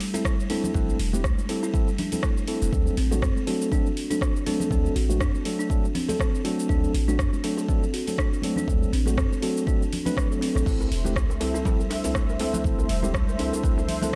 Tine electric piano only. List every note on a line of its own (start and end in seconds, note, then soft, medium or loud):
0.14 0.35 C4 medium
0.14 0.35 E4 medium
0.14 0.35 A4 medium
0.50 0.72 C4 medium
0.50 0.72 E4 medium
0.50 0.72 A4 loud
0.75 0.97 C4 medium
0.75 0.97 E4 medium
0.75 0.97 A4 medium
1.13 1.25 C4 medium
1.13 1.25 E4 medium
1.13 1.25 G4 medium
1.49 1.71 C4 medium
1.49 1.71 E4 medium
1.49 1.71 A4 loud
1.74 1.88 C4 medium
1.74 1.88 E4 medium
1.74 1.88 A4 loud
2.12 2.33 C4 medium
2.12 2.34 E4 medium
2.12 2.33 A4 medium
2.48 2.70 C4 medium
2.48 2.70 E4 medium
2.48 2.70 A4 loud
2.73 2.95 F#3 medium
2.73 2.95 A3 medium
2.73 2.95 C4 medium
2.73 2.95 D4 medium
2.73 2.95 A4 medium
3.12 3.24 F#3 medium
3.12 3.24 A3 medium
3.12 3.24 C4 medium
3.12 3.24 D4 medium
3.12 3.24 F#4 medium
3.47 3.69 F#3 medium
3.47 3.69 A3 medium
3.47 3.69 C4 medium
3.47 3.69 D4 medium
3.47 3.69 A4 loud
3.72 3.87 F#3 medium
3.72 3.87 A3 medium
3.72 3.87 C4 medium
3.72 3.87 D4 medium
3.72 3.87 A4 loud
4.11 4.32 F#3 medium
4.11 4.32 A3 medium
4.11 4.32 C4 medium
4.11 4.32 D4 medium
4.11 4.32 A4 medium
4.46 4.69 F#3 medium
4.46 4.69 A3 medium
4.46 4.69 C4 medium
4.46 4.69 D4 medium
4.46 4.69 A4 loud
4.71 4.93 F#3 medium
4.71 4.93 A3 medium
4.71 4.93 C4 medium
4.71 4.93 D4 medium
4.71 4.93 A4 medium
5.09 5.22 F#3 medium
5.09 5.22 A3 medium
5.09 5.22 C4 medium
5.09 5.22 D4 medium
5.09 5.22 F#4 loud
5.46 5.68 F#3 medium
5.46 5.68 A3 medium
5.46 5.68 C4 medium
5.46 5.68 D4 medium
5.46 5.68 A4 loud
5.70 5.85 F#3 medium
5.70 5.85 A3 medium
5.70 5.85 C4 medium
5.70 5.85 D4 medium
5.70 5.85 A4 loud
6.09 6.30 F#3 medium
6.09 6.30 A3 medium
6.09 6.30 C4 medium
6.09 6.30 D4 medium
6.09 6.30 A4 medium
6.45 6.67 F#3 medium
6.45 6.67 A3 medium
6.45 6.67 C4 medium
6.45 6.67 D4 medium
6.45 6.67 A4 loud
6.69 6.91 F#3 medium
6.69 6.91 A3 medium
6.69 6.91 C4 medium
6.69 6.91 D4 medium
6.69 6.91 A4 medium
7.08 7.20 F#3 medium
7.08 7.20 A3 medium
7.08 7.20 C4 medium
7.08 7.20 D4 medium
7.08 7.20 F#4 medium
7.44 7.66 F#3 medium
7.44 7.66 A3 medium
7.44 7.66 C4 medium
7.44 7.66 D4 medium
7.44 7.66 A4 loud
7.69 7.84 F#3 medium
7.69 7.83 A3 medium
7.69 7.84 C4 medium
7.69 7.84 D4 medium
7.69 7.84 A4 loud
8.08 8.29 F#3 medium
8.08 8.29 A3 medium
8.08 8.29 C4 medium
8.08 8.29 D4 medium
8.08 8.29 A4 medium
8.44 8.66 F#3 medium
8.44 8.66 A3 medium
8.44 8.66 C4 medium
8.44 8.66 D4 medium
8.44 8.66 A4 loud
8.68 8.90 F#3 medium
8.68 8.90 A3 medium
8.68 8.90 C4 medium
8.68 8.90 D4 medium
8.68 8.90 A4 medium
9.07 9.19 F#3 medium
9.07 9.19 A3 medium
9.07 9.19 C4 medium
9.07 9.19 D4 medium
9.07 9.19 F#4 medium
9.43 9.65 F#3 medium
9.43 9.65 A3 medium
9.43 9.65 C4 medium
9.43 9.65 D4 medium
9.43 9.65 A4 medium
9.68 9.82 F#3 medium
9.68 9.82 A3 medium
9.68 9.82 C4 medium
9.68 9.82 D4 medium
9.68 9.82 A4 loud
10.06 10.27 F#3 medium
10.06 10.27 A3 medium
10.06 10.27 C4 medium
10.06 10.27 D4 medium
10.06 10.27 B4 loud
10.31 10.64 F#3 medium
10.31 10.64 A3 medium
10.31 10.64 C4 medium
10.31 10.64 D4 medium
10.31 10.64 A4 medium
10.67 10.88 C4 medium
10.67 10.88 E4 medium
10.67 10.88 A4 medium
11.05 11.17 C4 medium
11.05 11.17 E4 medium
11.05 11.17 G4 medium
11.41 11.63 C4 medium
11.41 11.63 E4 medium
11.41 11.63 A4 loud
11.66 11.80 C4 medium
11.66 11.80 E4 medium
11.66 11.80 A4 loud
12.05 12.25 C4 medium
12.05 12.25 E4 medium
12.05 12.25 A4 medium
12.40 12.62 C4 medium
12.40 12.62 E4 medium
12.40 12.62 A4 loud
12.65 12.87 C4 medium
12.65 12.87 E4 medium
12.65 12.87 A4 medium
13.04 13.16 C4 medium
13.04 13.16 E4 medium
13.04 13.16 G4 loud
13.39 13.61 C4 medium
13.39 13.61 E4 medium
13.39 13.61 A4 loud
13.64 13.79 C4 medium
13.64 13.79 E4 medium
13.64 13.79 A4 loud
14.03 14.15 C4 medium
14.03 14.15 E4 medium
14.03 14.15 A4 medium